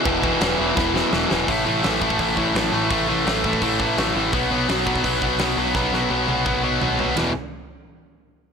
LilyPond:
<<
  \new Staff \with { instrumentName = "Distorted electric guitar" } { \clef bass \time 4/4 \key a \lydian \tempo 4 = 168 <e, b, e>8 <e, b, e>8 <e, b, e>8 <e, b, e>8 <e, b, e>8 <e, b, e>8 <e, b, e>8 <e, b, e>8 | <a, e a>8 <a, e a>8 <a, e a>8 <a, e a>8 <a, e a>8 <a, e a>8 <a, e a>8 <a, e a>8 | <a, e a>8 <a, e a>8 <a, e a>8 <a, e a>8 <a, e a>8 <a, e a>8 <a, e a>8 <a, e a>8 | <b, fis b>8 <b, fis b>8 <b, fis b>8 <b, fis b>8 <b, fis b>8 <b, fis b>8 <b, fis b>8 <b, fis b>8 |
<b, fis b>8 <b, fis b>8 <b, fis b>8 <b, fis b>8 <b, fis b>8 <b, fis b>8 <b, fis b>8 <b, fis b>8 | <e, b, e>8 r2. r8 | }
  \new Staff \with { instrumentName = "Picked electric bass" } { \clef bass \time 4/4 \key a \lydian e,,4 e,,8 e,,8 e,,4 e,,8 e,,8 | a,,8 a,,8 a,,8 a,,8 a,,4 a,,8 a,,8 | a,,8 a,,8 a,,8 a,,8 a,,4 a,,8 a,,8 | b,,8 b,,8 b,,8 b,,8 b,,4 b,,8 b,,8 |
b,,8 b,,8 b,,8 b,,8 b,,4 b,,8 b,,8 | e,,8 r2. r8 | }
  \new DrumStaff \with { instrumentName = "Drums" } \drummode { \time 4/4 <cymc bd>8 bd8 <cymc sn>4 <bd sn>8 sn8 sn8 sn8 | <hho bd>4 <hho sn>8 bd16 bd16 <hho bd>8 bd8 <hho sn>4 | <hho bd>4 <hho sn>8 bd16 bd16 <hho bd>8 bd8 <hho sn>4 | <hho bd>4 <hho sn>8 bd16 bd16 <hho bd>8 bd8 <hho sn>4 |
<bd sn>8 sn8 r8 tommh8 <bd toml>4 tomfh8 tomfh8 | <rb sn tomfh>4 r4 r4 r4 | }
>>